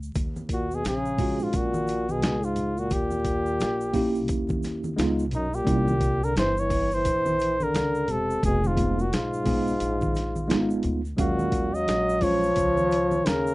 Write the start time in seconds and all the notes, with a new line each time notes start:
Already playing: D2
0.03 shaker
0.15 D#2, kick, closed hi-hat, shaker
0.36 high conga, shaker
0.49 A#2, kick, closed hi-hat, shaker
0.53 F#4
0.71 B2 G#4, shaker
0.84 A#1 C#3 G#4, snare, closed hi-hat, shaker
1.05 shaker
1.18 G#3 C#4 F4 F#4, kick, open hi-hat, low conga, shaker
1.39 G#2 F4, shaker
1.53 A#1 A#2 F#4, kick, closed hi-hat, shaker
1.74 high conga, shaker
1.87 closed hi-hat, shaker
2.09 B2 G#4, high conga, shaker
2.22 C#2, snare, closed hi-hat, high conga, shaker
2.43 G#2 F4, shaker
2.56 closed hi-hat, low conga, shaker
2.77 A#2 F#4, shaker
2.90 D#2 A#2 G4, kick, closed hi-hat, shaker
3.11 high conga, shaker
3.25 kick, closed hi-hat, shaker
3.46 shaker
3.60 A#1, snare, closed hi-hat, shaker
3.81 shaker
3.93 A#3 C#4 E4 G4, kick, open hi-hat, low conga, shaker
4.15 shaker
4.28 D#2, kick, closed hi-hat, shaker
4.49 kick, high conga, shaker
4.63 snare, closed hi-hat, shaker
4.84 high conga, shaker
4.96 C#2 G#3 B3 D#4 F4, snare, closed hi-hat, high conga, shaker
5.19 shaker
5.31 B1 F#2 D#4, closed hi-hat, low conga, shaker
5.54 A#2 G4, shaker
5.65 C2 G3 A#3 C#4 E4, kick, closed hi-hat, shaker
5.88 high conga, shaker
6.01 kick, closed hi-hat, shaker
6.23 D3 A#4, shaker
6.36 G1 E3 C5, snare, closed hi-hat, shaker
6.57 E3 C#5, shaker
6.70 kick, open hi-hat, low conga, shaker
6.91 E3 C5, shaker
7.05 A#1, kick, closed hi-hat, shaker
7.26 high conga, shaker
7.39 closed hi-hat, shaker
7.61 D3 A#4, high conga, shaker
7.74 C#2, snare, closed hi-hat, high conga, shaker
7.95 shaker
8.08 E1 C3 A4, closed hi-hat, low conga, shaker
8.30 shaker
8.43 F1 B2 G#4, kick, closed hi-hat, shaker
8.64 G#2 F4, high conga, shaker
8.76 G#3 B3 D#4 F4, kick, closed hi-hat, low conga, shaker
8.99 A#2 F#4, shaker
9.12 B1 G#2 F4, snare, closed hi-hat, shaker
9.34 shaker
9.44 G#3 B3 D#4 G#4, kick, open hi-hat, low conga, shaker
9.68 shaker
9.80 A#1, closed hi-hat, shaker
10.01 kick, high conga, shaker
10.15 snare, closed hi-hat, shaker
10.36 high conga, shaker
10.47 G#1 G#3 B3 D#4 F4, snare, closed hi-hat, high conga, shaker
10.70 shaker
10.83 D2, closed hi-hat, low conga, shaker
11.05 shaker
11.17 D#2 A#2 F#3 G#3 C#4 F#4 F5, kick, closed hi-hat, shaker
11.39 high conga, shaker
11.52 kick, closed hi-hat, shaker
11.73 F#3 D#5, shaker
11.88 A#1, snare, closed hi-hat, shaker
12.09 shaker
12.20 F3 F#3 G#3 C#4 F4 C#5, kick, open hi-hat, low conga, shaker
12.43 shaker
12.56 C#2, kick, closed hi-hat, shaker
12.77 high conga, shaker
12.91 closed hi-hat, shaker
13.11 high conga, shaker
13.25 D#2 C#3 A#4, snare, closed hi-hat, high conga, shaker
13.47 shaker